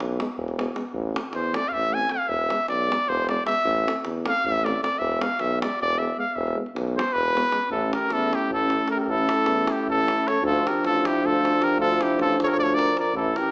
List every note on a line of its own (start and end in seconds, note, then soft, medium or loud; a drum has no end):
0.00 0.20 B1 loud
0.00 davul high medium
0.19 0.26 G#3 medium
0.19 0.28 B3 medium
0.19 davul high medium
0.37 0.68 E1 medium
0.37 davul low medium
0.48 davul high soft
0.57 0.64 G#3 medium
0.57 0.65 B3 medium
0.57 davul high medium
0.74 0.82 G#3 soft
0.74 0.84 B3 medium
0.74 davul high medium
0.94 1.16 A1 medium
0.94 davul low medium
1.13 1.21 A3 medium
1.13 1.23 C4 medium
1.13 davul high medium
1.24 davul high soft
1.32 1.54 E2 medium
1.32 1.57 C5 medium
1.32 davul high medium
1.44 davul high soft
1.53 1.61 A3 medium
1.53 1.70 D5 medium
1.53 davul high medium
1.57 1.64 C4 soft
1.63 davul high soft
1.68 1.74 F5 medium
1.68 davul low medium
1.73 2.05 A1 medium
1.73 1.95 E5 loud
1.83 davul high soft
1.90 1.98 A3 medium
1.90 2.13 G#5 medium
1.95 2.02 C4 medium
2.02 davul high soft
2.09 2.17 A3 soft
2.09 2.17 C4 soft
2.09 2.30 F5 medium
2.09 davul high medium
2.19 davul high soft
2.27 2.50 E1 medium
2.27 2.68 E5 medium
2.27 davul low medium
2.49 2.57 G#3 medium
2.49 2.58 B3 medium
2.49 davul high medium
2.68 2.91 B1 medium
2.68 3.10 D5 medium
2.68 davul high medium
2.88 2.96 G#3 medium
2.88 2.98 B3 medium
2.92 davul high medium
3.08 3.39 E1 medium
3.08 3.29 C5 loud
3.08 davul low medium
3.20 davul high soft
3.29 3.36 G#3 medium
3.29 3.37 B3 medium
3.29 3.46 D5 medium
3.29 davul high medium
3.46 3.53 G#3 medium
3.46 3.54 B3 medium
3.46 4.00 E5 medium
3.46 davul high medium
3.65 3.87 A1 loud
3.65 davul low medium
3.77 davul high soft
3.86 3.94 A3 medium
3.86 3.94 C4 medium
3.86 davul high medium
4.05 4.27 E2 medium
4.05 davul high medium
4.25 4.32 A3 medium
4.25 4.34 C4 medium
4.25 4.47 F5 loud
4.25 davul high medium
4.44 4.75 A1 medium
4.44 4.66 E5 loud
4.44 davul low medium
4.55 davul high soft
4.64 4.71 A3 medium
4.64 4.71 C4 medium
4.64 4.82 D5 medium
4.64 davul high medium
4.81 4.88 A3 medium
4.81 4.89 C4 medium
4.81 5.00 D5 medium
4.81 davul high medium
4.98 5.21 E1 medium
4.98 5.23 E5 medium
4.98 davul low medium
5.11 davul high soft
5.20 5.27 G#3 medium
5.20 5.29 B3 medium
5.20 5.42 F5 loud
5.20 davul high medium
5.39 5.62 B1 medium
5.39 5.61 E5 medium
5.39 davul high medium
5.61 5.69 G#3 medium
5.61 5.68 B3 medium
5.61 5.79 D5 medium
5.61 davul high medium
5.80 6.11 E1 medium
5.80 6.00 D5 loud
5.80 davul low medium
5.93 davul high soft
5.98 6.06 G#3 medium
5.98 6.07 B3 medium
5.98 6.17 E5 medium
6.16 6.24 G#3 medium
6.16 6.24 B3 medium
6.16 6.36 F5 medium
6.35 6.58 E1 loud
6.35 6.57 E5 medium
6.35 davul low medium
6.47 davul high soft
6.54 6.62 G#3 medium
6.54 6.65 B3 medium
6.66 davul high soft
6.76 6.98 B1 loud
6.76 davul high medium
6.88 davul high soft
6.94 7.02 G#3 medium
6.94 7.04 B3 medium
6.94 7.14 C5 loud
6.99 davul high medium
7.08 davul high soft
7.13 7.45 E1 medium
7.13 7.70 B4 loud
7.13 davul low medium
7.35 7.42 G#3 medium
7.35 7.43 B3 medium
7.35 davul high medium
7.51 7.58 G#3 medium
7.51 7.60 B3 medium
7.51 davul high medium
7.62 davul high soft
7.70 7.93 A1 medium
7.70 10.38 A3 medium
7.70 10.38 C#4 medium
7.70 7.91 E4 medium
7.70 7.91 A4 medium
7.70 davul low medium
7.83 davul high soft
7.93 8.14 G4 medium
7.93 8.14 A#4 medium
7.93 davul high medium
8.10 8.33 E2 medium
8.10 8.34 E4 medium
8.10 8.36 A4 medium
8.10 davul high medium
8.21 davul high soft
8.33 8.52 E4 medium
8.33 8.52 G4 medium
8.33 davul high medium
8.50 8.81 A1 medium
8.50 8.88 A4 loud
8.50 davul low medium
8.55 8.88 E4 medium
8.60 davul high soft
8.70 davul high medium
8.88 8.99 A#4 medium
8.88 davul high medium
8.96 9.04 G4 medium
8.96 9.11 A#4 medium
9.04 9.29 A1 medium
9.04 9.12 G4 medium
9.04 davul low medium
9.09 9.76 E4 medium
9.09 9.74 A4 loud
9.18 davul high soft
9.29 davul high medium
9.46 9.68 E2 medium
9.46 davul high medium
9.56 davul high soft
9.67 davul high medium
9.72 9.91 E4 medium
9.72 9.89 G4 medium
9.87 10.17 A1 medium
9.87 10.29 A4 loud
9.87 davul low medium
9.92 10.31 E4 medium
10.08 davul high medium
10.28 10.45 A4 medium
10.28 10.44 C#5 medium
10.28 davul high medium
10.42 10.64 D2 loud
10.42 13.14 F3 medium
10.42 12.96 D4 medium
10.42 davul low medium
10.46 10.69 F4 medium
10.46 10.69 A4 loud
10.55 davul high soft
10.67 10.84 G4 medium
10.67 10.84 A#4 medium
10.67 davul high medium
10.83 11.05 A1 medium
10.83 11.08 A4 loud
10.83 davul high medium
10.89 11.08 F4 medium
10.95 davul high soft
11.05 11.26 E4 medium
11.05 11.27 G4 medium
11.05 davul high medium
11.22 11.53 D2 medium
11.22 11.64 F4 medium
11.22 11.65 A4 loud
11.22 davul low medium
11.36 davul high soft
11.45 davul high medium
11.62 11.79 G4 medium
11.62 11.80 A#4 loud
11.62 davul high medium
11.77 11.99 D2 loud
11.77 12.03 F4 medium
11.77 12.04 A4 loud
11.77 davul low medium
11.91 davul high soft
12.01 12.19 E4 medium
12.01 12.19 G4 medium
12.01 davul high medium
12.11 davul high soft
12.16 12.39 A1 medium
12.16 12.39 F4 loud
12.16 davul high medium
12.21 12.40 A4 loud
12.30 davul high soft
12.40 12.46 A4 medium
12.40 12.47 C#5 loud
12.40 davul high medium
12.44 12.53 G4 medium
12.44 12.54 A#4 medium
12.50 12.59 A4 medium
12.50 12.59 C#5 medium
12.50 davul high soft
12.58 12.88 D2 medium
12.58 12.65 D5 loud
12.58 davul low medium
12.63 12.65 A4 medium
12.63 12.78 A4 medium
12.63 12.76 C#5 medium
12.69 davul high soft
12.74 12.97 A#4 medium
12.74 12.97 D5 loud
12.79 davul high medium
12.97 13.14 A#4 medium
12.97 13.15 D5 medium
12.97 davul high medium
13.05 davul high soft
13.12 13.35 A1 medium
13.12 13.51 E3 medium
13.12 13.51 C#4 medium
13.12 13.40 E4 medium
13.12 davul low medium
13.17 13.38 A4 medium
13.24 davul high soft
13.36 13.51 G4 medium
13.36 13.51 A#4 medium
13.36 davul high medium